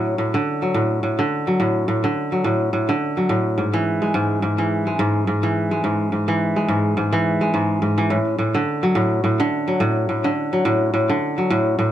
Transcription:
0.00 0.17 A2 medium
0.00 0.37 F#3 medium
0.18 0.37 A2 medium
0.34 0.80 D3 medium
0.62 1.22 F#3 medium
0.74 1.02 A2 medium
1.03 1.22 A2 medium
1.19 1.65 D3 medium
1.47 2.07 F#3 medium
1.60 1.87 A2 medium
1.88 2.07 A2 medium
2.04 2.49 D3 medium
2.32 2.92 F#3 medium
2.44 2.72 A2 medium
2.73 2.92 A2 medium
2.89 3.34 D3 medium
3.17 3.63 F#3 medium
3.29 3.63 A2 medium
3.58 4.13 G#2 medium
3.73 4.57 E3 medium
4.02 4.86 G#3 medium
4.14 4.41 G#2 medium
4.42 4.98 G#2 medium
4.58 5.42 E3 medium
4.87 5.70 G#3 medium
4.99 5.26 G#2 medium
5.27 5.83 G#2 medium
5.43 6.27 E3 medium
5.71 6.55 G#3 medium
5.84 6.11 G#2 medium
6.12 6.67 G#2 medium
6.28 7.11 E3 medium
6.56 7.40 G#3 medium
6.68 6.96 G#2 medium
6.97 7.53 G#2 medium
7.13 7.96 E3 medium
7.41 8.16 G#3 medium
7.54 7.81 G#2 medium
7.82 8.16 G#2 medium
7.98 8.16 E3 medium
8.10 8.37 A2 medium
8.38 8.58 A2 medium
8.54 9.00 D3 medium
8.83 9.43 F#3 medium
8.95 9.23 A2 loud
9.24 9.43 A2 medium
9.40 9.85 D3 loud
9.68 10.28 F#3 medium
9.80 10.08 A2 loud
10.09 10.28 A2 medium
10.24 10.70 D3 medium
10.53 11.13 F#3 medium
10.65 10.92 A2 loud
10.94 11.13 A2 medium
11.09 11.55 D3 medium
11.38 11.92 F#3 medium
11.50 11.77 A2 loud
11.79 11.92 A2 medium

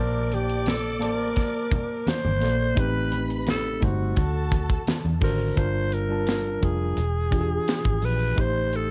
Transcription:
0.00 1.02 A#1 loud
0.00 0.82 A#3 medium
0.00 0.35 A#4 loud
0.00 0.83 C5 medium
0.00 0.84 D5 loud
0.00 2.38 D5 loud
0.00 0.82 A5 medium
0.00 2.38 D6 loud
0.32 0.70 G4 medium
0.32 closed hi-hat medium
0.32 muted conga soft
0.49 closed hi-hat medium
0.66 1.03 A4 medium
0.66 snare loud
0.66 closed hi-hat medium
0.66 high conga medium
1.00 1.32 A1 loud
1.00 2.15 A#3 medium
1.00 2.17 C5 medium
1.00 2.17 D5 medium
1.00 2.16 A5 medium
1.00 closed hi-hat medium
1.04 2.10 A#4 medium
1.36 kick medium
1.36 snare soft
1.36 closed hi-hat medium
1.36 muted conga soft
1.72 kick medium
1.72 closed hi-hat medium
1.72 muted conga soft
1.72 low conga medium
2.07 2.81 C5 medium
2.07 snare loud
2.07 closed hi-hat medium
2.07 high conga medium
2.25 2.42 G1 medium
2.25 high conga medium
2.41 2.72 A#1 medium
2.41 2.70 A#3 medium
2.41 2.71 A4 medium
2.41 2.71 C5 medium
2.41 2.72 D5 medium
2.41 snare soft
2.41 closed hi-hat medium
2.75 3.78 A1 medium
2.75 3.62 A3 medium
2.75 3.64 C4 loud
2.75 3.63 D#4 medium
2.75 3.63 G4 medium
2.75 3.80 B4 medium
2.75 3.80 B5 loud
2.75 kick loud
2.75 closed hi-hat loud
2.75 muted conga soft
2.79 3.22 B4 loud
3.12 closed hi-hat medium
3.12 muted conga soft
3.30 closed hi-hat soft
3.47 3.86 A4 medium
3.47 snare loud
3.47 closed hi-hat medium
3.47 high conga medium
3.80 4.12 G1 medium
3.80 4.17 G3 medium
3.80 4.16 A3 medium
3.80 4.17 D#4 medium
3.80 4.88 F#4 medium
3.80 4.18 C5 medium
3.80 kick medium
3.80 closed hi-hat medium
3.80 low conga medium
4.16 4.77 D2 loud
4.16 5.20 A4 medium
4.16 5.20 A5 loud
4.16 kick medium
4.16 closed hi-hat medium
4.16 muted conga soft
4.52 kick loud
4.52 closed hi-hat medium
4.52 muted conga medium
4.70 kick medium
4.87 snare loud
4.87 closed hi-hat medium
4.87 high conga medium
5.05 5.20 E2 medium
5.05 high conga medium
5.21 5.52 G#1 medium
5.21 5.50 D3 medium
5.21 5.51 D4 medium
5.21 5.51 F#4 medium
5.21 5.60 A#4 loud
5.21 5.52 C5 medium
5.21 kick loud
5.21 snare soft
5.21 open hi-hat medium
5.56 6.58 G1 loud
5.56 5.99 G3 medium
5.56 6.00 D4 medium
5.56 6.01 F4 medium
5.56 6.01 A#4 loud
5.56 5.95 C5 loud
5.56 kick loud
5.56 closed hi-hat medium
5.92 6.66 A#4 loud
5.92 closed hi-hat medium
6.08 6.52 G3 medium
6.08 6.53 D4 medium
6.08 6.53 F4 medium
6.08 6.54 A5 medium
6.27 snare loud
6.27 closed hi-hat medium
6.61 6.93 F1 medium
6.61 6.97 F3 medium
6.61 6.97 D4 medium
6.61 6.98 F4 medium
6.61 8.06 G#4 medium
6.61 6.98 A#4 medium
6.61 kick medium
6.61 closed hi-hat medium
6.97 7.58 E1 medium
6.97 closed hi-hat medium
7.31 8.18 E3 medium
7.31 8.18 D4 medium
7.31 8.19 F4 medium
7.31 7.40 G4 medium
7.31 kick medium
7.31 closed hi-hat medium
7.41 8.23 G#4 medium
7.68 snare loud
7.68 closed hi-hat medium
7.84 8.00 G#1 medium
7.84 kick medium
7.84 closed hi-hat soft
8.02 8.33 A#1 loud
8.02 8.42 B4 loud
8.02 open hi-hat medium
8.36 8.91 A1 loud
8.36 8.91 A3 medium
8.36 8.91 D#4 medium
8.36 8.91 G4 medium
8.36 8.91 C5 loud
8.36 kick loud
8.36 closed hi-hat loud
8.40 8.77 C5 loud
8.73 8.91 A4 medium
8.73 closed hi-hat medium

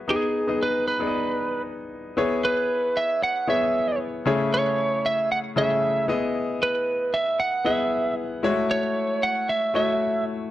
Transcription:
0.00 0.08 B3 medium
0.00 0.11 F#4 medium
0.00 0.08 G#4 medium
0.00 0.11 C#5 medium
0.00 0.11 E5 medium
0.08 0.36 B3 medium
0.08 0.37 D#4 medium
0.08 0.37 G#4 medium
0.08 0.63 G#4 medium
0.08 0.37 D#5 medium
0.47 0.85 B3 medium
0.47 0.85 D#4 medium
0.47 0.85 G#4 medium
0.47 0.86 D#5 medium
0.63 0.86 B4 loud
0.88 1.62 B4 medium
1.00 1.75 B3 medium
1.00 1.75 D#4 medium
1.00 1.75 G#4 medium
1.00 1.07 D5 medium
1.07 1.78 D#5 medium
2.17 2.92 B3 medium
2.17 2.92 E4 medium
2.17 2.92 G#4 medium
2.17 2.93 C#5 medium
2.45 2.98 B4 medium
2.97 3.23 E5 loud
3.23 3.49 F#5 loud
3.47 4.04 B3 medium
3.47 4.04 E4 medium
3.47 4.04 G#4 medium
3.47 4.04 C#5 medium
3.47 3.98 E5 medium
4.25 5.01 C#3 medium
4.25 5.01 A3 medium
4.25 5.01 E4 medium
4.25 5.01 G#4 medium
4.25 5.01 C#5 loud
4.54 5.07 C#5 medium
5.06 5.29 E5 loud
5.32 5.39 F#5 loud
5.56 6.08 C#3 medium
5.56 6.09 A3 medium
5.56 6.07 E4 medium
5.56 6.08 G#4 medium
5.56 6.09 C#5 medium
5.56 6.06 E5 medium
6.08 6.92 B3 medium
6.08 6.92 E4 medium
6.08 6.92 G#4 medium
6.08 6.93 D#5 medium
6.63 7.16 B4 medium
7.14 7.40 E5 loud
7.40 7.66 F#5 loud
7.64 8.21 B3 medium
7.64 8.21 E4 medium
7.64 8.22 G#4 medium
7.64 8.14 E5 medium
7.64 8.22 F#5 medium
8.43 8.50 G#3 medium
8.43 9.18 E4 medium
8.43 9.19 F#4 medium
8.43 9.19 C#5 loud
8.49 9.21 A3 medium
8.71 9.24 C#5 medium
9.23 9.49 F#5 loud
9.49 9.75 E5 loud
9.74 10.30 A3 medium
9.74 10.30 E4 medium
9.74 10.31 F#4 medium
9.74 10.31 C#5 medium
9.74 10.24 E5 medium

